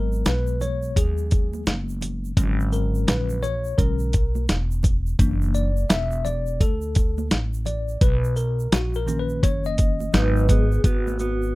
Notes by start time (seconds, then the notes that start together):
Already playing: G#1 F#3 G#3 B3 A#4
0.12 shaker
0.26 B1 B4, snare, closed hi-hat, shaker
0.47 shaker
0.61 C#5, low conga, shaker
0.82 shaker
0.96 D#2 G#4, kick, closed hi-hat, shaker
1.18 shaker
1.31 kick, closed hi-hat, shaker
1.33 shaker
1.53 high conga, shaker
1.67 F#1, snare, closed hi-hat, shaker
1.89 shaker
2.01 closed hi-hat, low conga, shaker
2.25 shaker
2.37 G#1 D3 F#3 G#3 C#4, kick, closed hi-hat, shaker
2.60 shaker
2.72 A#4, shaker
2.95 shaker
3.07 A#1 B4, snare, closed hi-hat, shaker
3.29 shaker
3.43 C#5, low conga, shaker
3.64 shaker
3.78 B1 D3 F#3 G#3 C#4 A#4, kick, closed hi-hat, shaker
3.99 shaker
4.13 kick, closed hi-hat, shaker
4.35 high conga, shaker
4.49 E1, snare, closed hi-hat, shaker
4.71 shaker
4.83 kick, closed hi-hat, low conga, shaker
4.84 shaker
5.07 shaker
5.19 F#1 E3 A#3 D4, kick, closed hi-hat, shaker
5.42 shaker
5.54 D5, shaker
5.77 shaker
5.90 E1 E5, snare, closed hi-hat, shaker
6.11 shaker
6.25 D5, low conga, shaker
6.46 shaker
6.61 D2 A4, kick, closed hi-hat, shaker
6.82 shaker
6.95 kick, closed hi-hat, shaker
6.97 shaker
7.18 high conga, shaker
7.31 A1, snare, closed hi-hat, shaker
7.54 shaker
7.65 D5, closed hi-hat, low conga, shaker
7.88 shaker
8.01 B1 B4, kick, closed hi-hat, shaker
8.24 shaker
8.36 A#4, shaker
8.59 shaker
8.72 A#1 F#4, snare, closed hi-hat, shaker
8.94 A#4, shaker
9.06 D#3 A#3 C#4, low conga, shaker
9.19 B4
9.29 shaker
9.43 F#1 C#5, kick, closed hi-hat, shaker
9.64 D#5, shaker
9.78 kick, closed hi-hat, shaker
9.80 shaker
10.00 high conga, shaker
10.13 G#1 F#3 G#3 B3 D#4 B4, snare, closed hi-hat, shaker
10.36 shaker
10.49 B3 G#4, kick, closed hi-hat, low conga, shaker
10.72 shaker
10.84 G#1 B3 F#4, kick, closed hi-hat, shaker
11.07 high conga, shaker
11.19 B3 F#4, shaker
11.42 shaker